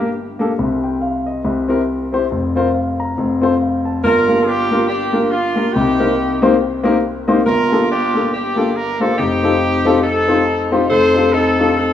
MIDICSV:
0, 0, Header, 1, 3, 480
1, 0, Start_track
1, 0, Tempo, 430108
1, 642, Time_signature, 4, 2, 24, 8
1, 13314, End_track
2, 0, Start_track
2, 0, Title_t, "Grand piano"
2, 0, Program_c, 0, 0
2, 0, Note_on_c, 0, 31, 51
2, 0, Note_on_c, 0, 43, 57
2, 439, Note_on_c, 0, 58, 84
2, 444, Note_on_c, 0, 62, 70
2, 449, Note_on_c, 0, 67, 69
2, 457, Note_on_c, 0, 69, 90
2, 564, Note_off_c, 0, 58, 0
2, 566, Note_off_c, 0, 62, 0
2, 569, Note_off_c, 0, 67, 0
2, 573, Note_off_c, 0, 69, 0
2, 607, Note_off_c, 0, 43, 0
2, 608, Note_off_c, 0, 31, 0
2, 652, Note_on_c, 0, 48, 72
2, 654, Note_on_c, 0, 36, 73
2, 933, Note_on_c, 0, 79, 57
2, 1120, Note_off_c, 0, 79, 0
2, 1132, Note_on_c, 0, 77, 65
2, 1393, Note_off_c, 0, 77, 0
2, 1411, Note_on_c, 0, 75, 60
2, 1565, Note_off_c, 0, 48, 0
2, 1566, Note_off_c, 0, 36, 0
2, 1609, Note_on_c, 0, 36, 73
2, 1610, Note_on_c, 0, 48, 72
2, 1864, Note_off_c, 0, 75, 0
2, 1880, Note_on_c, 0, 60, 83
2, 1881, Note_on_c, 0, 64, 72
2, 1889, Note_on_c, 0, 67, 69
2, 1896, Note_on_c, 0, 70, 93
2, 2006, Note_off_c, 0, 60, 0
2, 2007, Note_off_c, 0, 64, 0
2, 2011, Note_off_c, 0, 67, 0
2, 2014, Note_off_c, 0, 70, 0
2, 2371, Note_on_c, 0, 60, 72
2, 2376, Note_on_c, 0, 64, 74
2, 2384, Note_on_c, 0, 67, 71
2, 2387, Note_on_c, 0, 72, 92
2, 2492, Note_off_c, 0, 60, 0
2, 2495, Note_off_c, 0, 64, 0
2, 2499, Note_off_c, 0, 67, 0
2, 2501, Note_off_c, 0, 72, 0
2, 2525, Note_off_c, 0, 36, 0
2, 2526, Note_off_c, 0, 48, 0
2, 2575, Note_on_c, 0, 41, 70
2, 2579, Note_on_c, 0, 29, 70
2, 2853, Note_on_c, 0, 60, 79
2, 2856, Note_on_c, 0, 65, 76
2, 2865, Note_on_c, 0, 70, 78
2, 2867, Note_on_c, 0, 72, 91
2, 2974, Note_off_c, 0, 60, 0
2, 2976, Note_off_c, 0, 65, 0
2, 2980, Note_off_c, 0, 70, 0
2, 2981, Note_off_c, 0, 72, 0
2, 3062, Note_on_c, 0, 77, 58
2, 3320, Note_off_c, 0, 77, 0
2, 3345, Note_on_c, 0, 82, 63
2, 3489, Note_off_c, 0, 41, 0
2, 3491, Note_off_c, 0, 29, 0
2, 3544, Note_on_c, 0, 41, 75
2, 3545, Note_on_c, 0, 29, 75
2, 3794, Note_off_c, 0, 82, 0
2, 3812, Note_on_c, 0, 60, 84
2, 3817, Note_on_c, 0, 65, 69
2, 3827, Note_on_c, 0, 69, 77
2, 3831, Note_on_c, 0, 72, 93
2, 3935, Note_off_c, 0, 60, 0
2, 3937, Note_off_c, 0, 65, 0
2, 3942, Note_off_c, 0, 69, 0
2, 3944, Note_off_c, 0, 72, 0
2, 4029, Note_on_c, 0, 77, 59
2, 4285, Note_off_c, 0, 77, 0
2, 4301, Note_on_c, 0, 81, 62
2, 4453, Note_off_c, 0, 41, 0
2, 4454, Note_off_c, 0, 29, 0
2, 4502, Note_on_c, 0, 31, 60
2, 4507, Note_on_c, 0, 43, 57
2, 4751, Note_off_c, 0, 81, 0
2, 4774, Note_on_c, 0, 58, 69
2, 4778, Note_on_c, 0, 62, 66
2, 4781, Note_on_c, 0, 65, 60
2, 4787, Note_on_c, 0, 67, 69
2, 4790, Note_on_c, 0, 70, 79
2, 4896, Note_off_c, 0, 58, 0
2, 4897, Note_off_c, 0, 62, 0
2, 4899, Note_off_c, 0, 65, 0
2, 4902, Note_off_c, 0, 67, 0
2, 4904, Note_off_c, 0, 70, 0
2, 5257, Note_on_c, 0, 58, 76
2, 5258, Note_on_c, 0, 62, 65
2, 5260, Note_on_c, 0, 65, 63
2, 5263, Note_on_c, 0, 67, 60
2, 5270, Note_on_c, 0, 70, 80
2, 5377, Note_off_c, 0, 58, 0
2, 5377, Note_off_c, 0, 62, 0
2, 5378, Note_off_c, 0, 65, 0
2, 5380, Note_off_c, 0, 67, 0
2, 5383, Note_off_c, 0, 70, 0
2, 5720, Note_on_c, 0, 58, 76
2, 5723, Note_on_c, 0, 62, 71
2, 5726, Note_on_c, 0, 65, 68
2, 5735, Note_on_c, 0, 67, 72
2, 5736, Note_on_c, 0, 70, 80
2, 5848, Note_off_c, 0, 58, 0
2, 5849, Note_off_c, 0, 62, 0
2, 5851, Note_off_c, 0, 65, 0
2, 5856, Note_off_c, 0, 67, 0
2, 5856, Note_off_c, 0, 70, 0
2, 6197, Note_on_c, 0, 58, 69
2, 6202, Note_on_c, 0, 65, 68
2, 6203, Note_on_c, 0, 62, 64
2, 6208, Note_on_c, 0, 67, 67
2, 6217, Note_on_c, 0, 70, 85
2, 6326, Note_off_c, 0, 58, 0
2, 6329, Note_off_c, 0, 62, 0
2, 6329, Note_off_c, 0, 65, 0
2, 6332, Note_off_c, 0, 67, 0
2, 6336, Note_off_c, 0, 70, 0
2, 6370, Note_off_c, 0, 31, 0
2, 6373, Note_off_c, 0, 43, 0
2, 6419, Note_on_c, 0, 48, 62
2, 6421, Note_on_c, 0, 36, 70
2, 6687, Note_on_c, 0, 58, 70
2, 6691, Note_on_c, 0, 60, 67
2, 6695, Note_on_c, 0, 63, 68
2, 6697, Note_on_c, 0, 70, 83
2, 6698, Note_on_c, 0, 67, 64
2, 6811, Note_off_c, 0, 58, 0
2, 6813, Note_off_c, 0, 60, 0
2, 6815, Note_off_c, 0, 63, 0
2, 6816, Note_off_c, 0, 67, 0
2, 6816, Note_off_c, 0, 70, 0
2, 7165, Note_on_c, 0, 58, 95
2, 7167, Note_on_c, 0, 60, 78
2, 7172, Note_on_c, 0, 63, 84
2, 7176, Note_on_c, 0, 67, 73
2, 7177, Note_on_c, 0, 72, 96
2, 7289, Note_off_c, 0, 58, 0
2, 7290, Note_off_c, 0, 60, 0
2, 7293, Note_off_c, 0, 63, 0
2, 7295, Note_off_c, 0, 67, 0
2, 7296, Note_off_c, 0, 72, 0
2, 7628, Note_on_c, 0, 58, 95
2, 7632, Note_on_c, 0, 60, 91
2, 7640, Note_on_c, 0, 63, 84
2, 7645, Note_on_c, 0, 67, 88
2, 7648, Note_on_c, 0, 70, 99
2, 7761, Note_off_c, 0, 58, 0
2, 7762, Note_off_c, 0, 60, 0
2, 7766, Note_off_c, 0, 63, 0
2, 7769, Note_off_c, 0, 67, 0
2, 7770, Note_off_c, 0, 70, 0
2, 8121, Note_on_c, 0, 58, 92
2, 8125, Note_on_c, 0, 63, 89
2, 8126, Note_on_c, 0, 60, 81
2, 8134, Note_on_c, 0, 72, 92
2, 8137, Note_on_c, 0, 67, 72
2, 8247, Note_off_c, 0, 58, 0
2, 8249, Note_off_c, 0, 60, 0
2, 8249, Note_off_c, 0, 63, 0
2, 8253, Note_off_c, 0, 72, 0
2, 8254, Note_off_c, 0, 67, 0
2, 8286, Note_off_c, 0, 48, 0
2, 8288, Note_off_c, 0, 36, 0
2, 8328, Note_on_c, 0, 31, 66
2, 8329, Note_on_c, 0, 43, 58
2, 8609, Note_on_c, 0, 58, 67
2, 8612, Note_on_c, 0, 62, 65
2, 8617, Note_on_c, 0, 65, 74
2, 8621, Note_on_c, 0, 67, 76
2, 8622, Note_on_c, 0, 69, 87
2, 8731, Note_off_c, 0, 58, 0
2, 8732, Note_off_c, 0, 62, 0
2, 8734, Note_off_c, 0, 65, 0
2, 8736, Note_off_c, 0, 67, 0
2, 8737, Note_off_c, 0, 69, 0
2, 9084, Note_on_c, 0, 58, 71
2, 9087, Note_on_c, 0, 62, 66
2, 9089, Note_on_c, 0, 65, 70
2, 9098, Note_on_c, 0, 67, 69
2, 9098, Note_on_c, 0, 69, 78
2, 9208, Note_off_c, 0, 58, 0
2, 9209, Note_off_c, 0, 62, 0
2, 9210, Note_off_c, 0, 65, 0
2, 9214, Note_off_c, 0, 67, 0
2, 9215, Note_off_c, 0, 69, 0
2, 9551, Note_on_c, 0, 58, 72
2, 9559, Note_on_c, 0, 62, 69
2, 9566, Note_on_c, 0, 65, 72
2, 9566, Note_on_c, 0, 67, 70
2, 9571, Note_on_c, 0, 69, 84
2, 9681, Note_off_c, 0, 58, 0
2, 9685, Note_off_c, 0, 62, 0
2, 9688, Note_off_c, 0, 65, 0
2, 9688, Note_off_c, 0, 67, 0
2, 9691, Note_off_c, 0, 69, 0
2, 10040, Note_on_c, 0, 58, 73
2, 10046, Note_on_c, 0, 62, 63
2, 10049, Note_on_c, 0, 65, 64
2, 10055, Note_on_c, 0, 67, 66
2, 10060, Note_on_c, 0, 72, 76
2, 10165, Note_off_c, 0, 58, 0
2, 10168, Note_off_c, 0, 62, 0
2, 10170, Note_off_c, 0, 65, 0
2, 10172, Note_off_c, 0, 67, 0
2, 10175, Note_off_c, 0, 72, 0
2, 10200, Note_off_c, 0, 31, 0
2, 10201, Note_off_c, 0, 43, 0
2, 10253, Note_on_c, 0, 41, 67
2, 10254, Note_on_c, 0, 29, 67
2, 10523, Note_on_c, 0, 60, 70
2, 10527, Note_on_c, 0, 63, 71
2, 10531, Note_on_c, 0, 65, 61
2, 10536, Note_on_c, 0, 67, 74
2, 10541, Note_on_c, 0, 69, 83
2, 10646, Note_off_c, 0, 60, 0
2, 10649, Note_off_c, 0, 63, 0
2, 10650, Note_off_c, 0, 65, 0
2, 10653, Note_off_c, 0, 67, 0
2, 10655, Note_off_c, 0, 69, 0
2, 10994, Note_on_c, 0, 60, 86
2, 10999, Note_on_c, 0, 63, 72
2, 11001, Note_on_c, 0, 65, 81
2, 11007, Note_on_c, 0, 67, 88
2, 11008, Note_on_c, 0, 69, 100
2, 11122, Note_off_c, 0, 60, 0
2, 11124, Note_off_c, 0, 63, 0
2, 11125, Note_off_c, 0, 65, 0
2, 11128, Note_off_c, 0, 67, 0
2, 11129, Note_off_c, 0, 69, 0
2, 11471, Note_on_c, 0, 60, 67
2, 11476, Note_on_c, 0, 63, 72
2, 11478, Note_on_c, 0, 65, 68
2, 11485, Note_on_c, 0, 72, 82
2, 11488, Note_on_c, 0, 67, 68
2, 11600, Note_off_c, 0, 60, 0
2, 11603, Note_off_c, 0, 63, 0
2, 11604, Note_off_c, 0, 65, 0
2, 11607, Note_off_c, 0, 72, 0
2, 11608, Note_off_c, 0, 67, 0
2, 11959, Note_on_c, 0, 60, 83
2, 11962, Note_on_c, 0, 63, 79
2, 11964, Note_on_c, 0, 65, 79
2, 11970, Note_on_c, 0, 67, 84
2, 11971, Note_on_c, 0, 72, 86
2, 12084, Note_off_c, 0, 60, 0
2, 12085, Note_off_c, 0, 63, 0
2, 12087, Note_off_c, 0, 65, 0
2, 12090, Note_off_c, 0, 67, 0
2, 12090, Note_off_c, 0, 72, 0
2, 12123, Note_off_c, 0, 29, 0
2, 12123, Note_off_c, 0, 41, 0
2, 12171, Note_on_c, 0, 41, 59
2, 12172, Note_on_c, 0, 29, 59
2, 12437, Note_on_c, 0, 62, 76
2, 12443, Note_on_c, 0, 63, 60
2, 12449, Note_on_c, 0, 65, 71
2, 12451, Note_on_c, 0, 67, 73
2, 12453, Note_on_c, 0, 69, 78
2, 12563, Note_off_c, 0, 62, 0
2, 12565, Note_off_c, 0, 63, 0
2, 12569, Note_off_c, 0, 65, 0
2, 12570, Note_off_c, 0, 67, 0
2, 12570, Note_off_c, 0, 69, 0
2, 12930, Note_on_c, 0, 62, 77
2, 12931, Note_on_c, 0, 63, 67
2, 12936, Note_on_c, 0, 65, 64
2, 12941, Note_on_c, 0, 67, 67
2, 12943, Note_on_c, 0, 69, 90
2, 13049, Note_off_c, 0, 62, 0
2, 13049, Note_off_c, 0, 63, 0
2, 13052, Note_off_c, 0, 65, 0
2, 13054, Note_off_c, 0, 67, 0
2, 13055, Note_off_c, 0, 69, 0
2, 13314, Note_off_c, 0, 29, 0
2, 13314, Note_off_c, 0, 41, 0
2, 13314, End_track
3, 0, Start_track
3, 0, Title_t, "Horn section"
3, 0, Program_c, 1, 61
3, 0, Note_on_c, 1, 58, 56
3, 0, Note_on_c, 1, 62, 55
3, 127, Note_off_c, 1, 58, 0
3, 128, Note_off_c, 1, 62, 0
3, 4499, Note_on_c, 1, 62, 76
3, 4500, Note_on_c, 1, 70, 107
3, 4507, Note_on_c, 1, 65, 83
3, 4942, Note_off_c, 1, 70, 0
3, 4970, Note_on_c, 1, 67, 97
3, 4976, Note_off_c, 1, 62, 0
3, 4987, Note_on_c, 1, 58, 73
3, 4989, Note_on_c, 1, 62, 70
3, 5414, Note_off_c, 1, 65, 0
3, 5424, Note_off_c, 1, 67, 0
3, 5438, Note_on_c, 1, 67, 84
3, 5444, Note_off_c, 1, 58, 0
3, 5451, Note_off_c, 1, 62, 0
3, 5457, Note_on_c, 1, 58, 63
3, 5465, Note_on_c, 1, 62, 72
3, 5889, Note_off_c, 1, 67, 0
3, 5919, Note_on_c, 1, 65, 97
3, 5933, Note_off_c, 1, 58, 0
3, 5933, Note_off_c, 1, 62, 0
3, 5946, Note_on_c, 1, 58, 60
3, 5946, Note_on_c, 1, 62, 63
3, 6384, Note_off_c, 1, 62, 0
3, 6385, Note_off_c, 1, 58, 0
3, 6390, Note_on_c, 1, 67, 96
3, 6404, Note_off_c, 1, 65, 0
3, 6412, Note_on_c, 1, 63, 68
3, 6414, Note_on_c, 1, 58, 65
3, 7157, Note_off_c, 1, 67, 0
3, 7324, Note_off_c, 1, 63, 0
3, 7325, Note_off_c, 1, 58, 0
3, 8324, Note_on_c, 1, 70, 99
3, 8333, Note_on_c, 1, 62, 73
3, 8337, Note_on_c, 1, 65, 80
3, 8771, Note_off_c, 1, 70, 0
3, 8806, Note_off_c, 1, 62, 0
3, 8816, Note_on_c, 1, 67, 91
3, 8820, Note_on_c, 1, 62, 74
3, 8826, Note_on_c, 1, 58, 69
3, 9246, Note_off_c, 1, 65, 0
3, 9286, Note_off_c, 1, 67, 0
3, 9293, Note_off_c, 1, 58, 0
3, 9300, Note_off_c, 1, 62, 0
3, 9300, Note_on_c, 1, 67, 92
3, 9307, Note_on_c, 1, 58, 61
3, 9314, Note_on_c, 1, 62, 64
3, 9739, Note_off_c, 1, 67, 0
3, 9761, Note_on_c, 1, 70, 104
3, 10028, Note_on_c, 1, 69, 94
3, 10040, Note_off_c, 1, 70, 0
3, 10210, Note_off_c, 1, 58, 0
3, 10214, Note_off_c, 1, 62, 0
3, 10237, Note_off_c, 1, 69, 0
3, 10240, Note_on_c, 1, 67, 104
3, 10246, Note_on_c, 1, 60, 77
3, 10246, Note_on_c, 1, 63, 75
3, 11159, Note_off_c, 1, 60, 0
3, 11160, Note_off_c, 1, 63, 0
3, 11189, Note_on_c, 1, 69, 97
3, 11201, Note_off_c, 1, 67, 0
3, 11202, Note_on_c, 1, 63, 72
3, 11207, Note_on_c, 1, 60, 73
3, 11909, Note_off_c, 1, 69, 0
3, 12118, Note_off_c, 1, 63, 0
3, 12120, Note_off_c, 1, 60, 0
3, 12154, Note_on_c, 1, 72, 101
3, 12165, Note_on_c, 1, 63, 80
3, 12170, Note_on_c, 1, 69, 90
3, 12604, Note_off_c, 1, 72, 0
3, 12621, Note_off_c, 1, 69, 0
3, 12630, Note_off_c, 1, 63, 0
3, 12634, Note_on_c, 1, 69, 101
3, 12644, Note_on_c, 1, 63, 77
3, 12647, Note_on_c, 1, 60, 78
3, 13114, Note_off_c, 1, 69, 0
3, 13127, Note_on_c, 1, 69, 95
3, 13132, Note_off_c, 1, 63, 0
3, 13134, Note_off_c, 1, 60, 0
3, 13145, Note_on_c, 1, 63, 75
3, 13147, Note_on_c, 1, 60, 74
3, 13314, Note_off_c, 1, 60, 0
3, 13314, Note_off_c, 1, 63, 0
3, 13314, Note_off_c, 1, 69, 0
3, 13314, End_track
0, 0, End_of_file